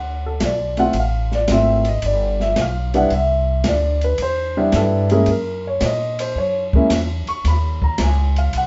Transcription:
Already playing: D2 F#5
0.26 A4
0.40 B1, kick, snare, hi-hat pedal, ride
0.45 D5
0.77 A3 C4 E4 F4 F#5, ride
0.93 A1, kick, ride
1.00 F5
1.32 D5, snare
1.48 G#1 A3 C4 E4 F4, kick, snare, hi-hat pedal, ride
1.52 E5
1.85 ride
1.89 D#5
2.02 G1, kick, ride
2.06 D5
2.40 E5, snare
2.56 B1, kick, snare, hi-hat pedal, ride
2.61 F5
2.94 G3 B3 D4 E4 F#5, ride
3.10 C2, kick, ride
3.15 E5
3.64 D2, kick, snare, hi-hat pedal, ride
3.68 D5
4.01 B4, ride
4.18 E2, kick, ride
4.22 C5
4.57 G3 B3 D4 E4 B4
4.72 G2 A4, kick, snare, hi-hat pedal, ride
5.10 G#3 A#3 C#4 E4 G#4, ride
5.26 F#2, kick, ride
5.30 A#4
5.67 C#5
5.81 A#2, kick, snare, hi-hat pedal, ride
5.86 D#5
6.19 C5, ride
6.35 F#2 C#5, kick
6.73 G#3 A#3 C#4 E4, kick
6.90 E2, kick, snare, hi-hat pedal, ride
7.27 C#6, muted upright bass stroke, ride
7.44 D#2 B5, kick, snare, ride
7.82 A#5, kick
7.98 C#2, kick, snare, hi-hat pedal, ride
8.02 G#5
8.36 F5, ride
8.53 B1, kick, ride
8.57 F#5

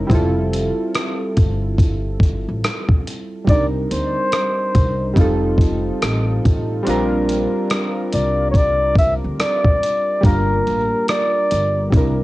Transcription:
Already playing: G#3 C#4 D#4 E4 A#4
0.07 F1 G3 C4 E4, kick, closed hi-hat
0.13 F4 A4
0.53 closed hi-hat
0.95 cross-stick, closed hi-hat
1.37 G1, kick, closed hi-hat
1.78 kick, closed hi-hat
2.20 kick, closed hi-hat
2.48 A1
2.64 cross-stick, closed hi-hat
2.89 kick
3.08 closed hi-hat
3.45 C2 G3 C4 D4, kick
3.49 D#4 A#4 D5, closed hi-hat
3.91 D2 C5, closed hi-hat
4.32 cross-stick, closed hi-hat
4.75 C2, kick, closed hi-hat
5.14 F1 G3 C4 D#4, kick, closed hi-hat
5.19 F4 A4
5.58 kick, closed hi-hat
6.02 A1, cross-stick, closed hi-hat
6.45 A1, kick, closed hi-hat
6.83 G3 C4 D4, closed hi-hat
6.87 A#1 F4 A#4
7.29 closed hi-hat
7.70 cross-stick, closed hi-hat
8.13 C2 D5, closed hi-hat
8.51 C#5, kick
8.55 D5, closed hi-hat
8.96 E5, kick, closed hi-hat
9.24 D2
9.40 D5, cross-stick, closed hi-hat
9.65 kick
9.83 closed hi-hat
10.21 G1 G3 A#3 D4, kick, closed hi-hat
10.25 F4 A#4
10.67 A1, closed hi-hat
11.08 D5, cross-stick, closed hi-hat
11.51 G1, closed hi-hat
11.90 C2 G3 C4 D4, kick, closed hi-hat
11.95 E4 A#4

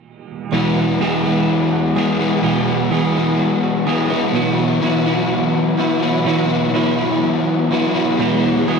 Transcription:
0.51 E2 B2 E3 F#3 G#3 B3 E4 G#4
0.78 B3
0.99 E2 B2 E3 G#3 B3 G#4
1.03 E4
1.24 E3 G#3 B3 E4 G#4
1.50 F#3
1.73 F#4
1.96 E3 G#3 B3 E4 G#4
2.19 E3 G#3 B3 E4 G#4
2.42 E2 B2 E3 F#3 G#3 B3 G#4
2.46 E4
2.68 B3
2.90 E2 B2 E3 G#3 B3 G#4
2.94 E4
3.14 E3 G#3 B3 E4 G#4
3.39 F#3
3.64 F#4
3.86 E3 G#3 B3 E4 G#4
4.10 E3 G#3 B3 E4 G#4
4.33 B2 E3 F#3 B3 E4 F#4
4.59 F#3
4.82 B2 E3 F#3 B3 E4 F#4
5.06 F#3 B3 E4 F#4
5.32 F#3
5.55 B3
5.77 E3 F#3 B3 E4 F#4
6.00 F#3 B3 E4 F#4
6.05 F#3
6.24 B2 E3 F#3 B3 E4 F#4
6.51 F#3
6.73 B2 E3 F#3 B3 E4 F#4
6.96 F#3 B3 E4 F#4
7.00 F#3
7.23 F#3
7.47 B3
7.70 E3 F#3 B3 E4 F#4
7.94 F#3 B3 E4 F#4
8.19 E2 B2 E3 F#3 G#3 B3 E4 F#4 G#4
8.44 B3
8.67 E2 B2 E3 G#3 B3 E4 G#4

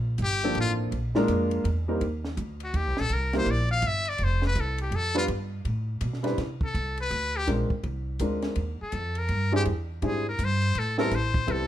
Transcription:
Already playing: A#1
0.18 G1, kick, hi-hat pedal, ride
0.23 G4
0.41 F3 A#3 C4 D4 A4, ride
0.55 A1, kick, ride
0.60 F4
0.91 A#1, kick, ride
1.15 G#3 A#3 D4 F4 A#4, snare
1.28 F2, kick, hi-hat pedal, ride
1.51 ride
1.64 E2, kick, ride
1.88 G3 A#3 C4 D#4 A#4
2.01 D#2, kick, ride
2.25 snare
2.37 D2, kick, hi-hat pedal, ride
2.60 F#4, ride
2.73 D#2 G4, kick, ride
2.87 C2
2.97 A#1 A4, snare
3.09 C2, kick, ride
3.14 A#4
3.33 G3 A#3 C4 E4 A#4, snare, ride
3.38 C5
3.46 A#1, kick, ride
3.51 D5
3.71 F5
3.82 G1, kick, hi-hat pedal, ride
3.87 E5
4.05 D5, ride
4.18 F1, kick, ride
4.24 C5
4.42 snare
4.47 B4
4.55 C2, kick, hi-hat pedal, ride
4.60 A4
4.78 G4, ride
4.91 F2, kick, ride
4.96 A4
5.14 G3 B3 D4 F4 B4
5.28 G2, kick, ride
5.65 A2, kick, ride
6.01 B2, kick, hi-hat pedal, ride
6.13 snare
6.23 G3 C4 D4 E4 B4, snare, ride
6.37 C3, kick, snare, ride
6.61 A4, kick
6.74 C2, kick, hi-hat pedal, ride
6.97 B4, ride
7.11 D2, kick, ride
7.37 G4
7.47 A#1 G#3 C4 D4 F4 A#4, kick, snare, ride
7.70 muted upright bass stroke, kick
7.83 C2, kick, ride
8.19 D2 G#3 C4 D4 F4 A#4, kick, hi-hat pedal, ride
8.42 snare, ride
8.56 D#2, kick, ride
8.82 A4, muted upright bass stroke
8.92 F2, kick, hi-hat pedal, ride
9.15 A#4, ride
9.29 G2, kick, ride
9.52 G3 C4 D4 E4 G4 G#4
9.65 E2, kick, ride
10.02 G#2 G3 C4 D4 E4 G#4, kick, ride
10.07 G#4
10.29 A#4
10.39 G2, kick, hi-hat pedal, ride
10.45 C5
10.62 ride
10.75 A2 A4, kick, ride
10.98 G3 B3 C4 E4 A4 A#4, snare
11.11 A1, kick, snare, hi-hat pedal, ride
11.15 C5
11.34 kick
11.47 C2 G3 B3 C4 E4 A4, kick, ride
11.52 A4

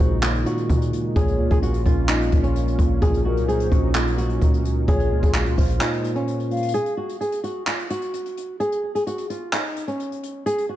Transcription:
Already playing: A#2 C#3 D#3 G#3 D#4 C5
0.00 A#1 D#4 F#4, kick, closed hi-hat
0.22 A#2 F4, clap, closed hi-hat
0.35 closed hi-hat
0.46 A#2 F#4, closed hi-hat
0.57 closed hi-hat
0.69 A#2, kick, closed hi-hat
0.81 closed hi-hat
0.93 A#2, closed hi-hat
1.16 A#1 A#2 A#3 C#4 F4 G#4 C#5, kick, closed hi-hat
1.28 closed hi-hat
1.39 C#2 A#2
1.51 A#1 G#4, kick, closed hi-hat
1.62 F#4, closed hi-hat
1.74 closed hi-hat
1.86 A#1 C#4 F4, kick, closed hi-hat
2.08 A#2 D#4, clap, closed hi-hat
2.21 closed hi-hat
2.32 A#1 A#2, kick, closed hi-hat
2.43 C#4, closed hi-hat
2.55 closed hi-hat
2.68 closed hi-hat
2.79 A#1 A#2, kick, closed hi-hat
3.02 A#1 A#2 F#3 A#3 D#4 G#4, kick, closed hi-hat
3.14 closed hi-hat
3.25 A#2 F#4 A#4
3.37 C2, closed hi-hat
3.48 G#4 C5, closed hi-hat
3.60 closed hi-hat
3.72 A#1 C#4 F#4, kick, closed hi-hat
3.95 A#2 F4, clap, closed hi-hat
4.07 closed hi-hat
4.18 A#2 F#4, closed hi-hat
4.30 closed hi-hat
4.41 C#2, kick, closed hi-hat
4.54 closed hi-hat
4.65 A#2, closed hi-hat
4.88 A#1 A#2 G#3 F4 G#4 C#5, kick, closed hi-hat
5.00 closed hi-hat
5.11 C#2 A#2
5.23 A#1 G#4, kick, closed hi-hat
5.34 F#4, clap, closed hi-hat
5.46 C#2, closed hi-hat
5.58 A#1 F4 C5, kick, closed hi-hat, open hi-hat
5.69 closed hi-hat
5.81 A#2 D#4, clap, closed hi-hat
5.93 closed hi-hat
6.04 A#2, closed hi-hat
6.15 C#4, closed hi-hat
6.27 closed hi-hat
6.40 closed hi-hat
6.51 A#2 F5, closed hi-hat
6.57 closed hi-hat
6.62 closed hi-hat
6.68 closed hi-hat
6.74 G#4, closed hi-hat
6.86 closed hi-hat
6.97 F#4
7.09 closed hi-hat
7.21 G#4, closed hi-hat
7.32 closed hi-hat
7.44 F#4, closed hi-hat
7.67 F4, clap, closed hi-hat
7.79 closed hi-hat
7.90 F#4, closed hi-hat
8.02 closed hi-hat
8.14 closed hi-hat
8.26 closed hi-hat
8.37 closed hi-hat
8.60 G#4, closed hi-hat
8.72 closed hi-hat
8.95 G#4, closed hi-hat
9.07 F#4, closed hi-hat
9.18 closed hi-hat
9.30 F4, closed hi-hat
9.53 D#4, clap, closed hi-hat
9.65 closed hi-hat
9.76 closed hi-hat
9.88 C#4, closed hi-hat
10.00 closed hi-hat
10.12 closed hi-hat
10.23 closed hi-hat
10.46 G#4, closed hi-hat
10.58 closed hi-hat
10.69 F#4

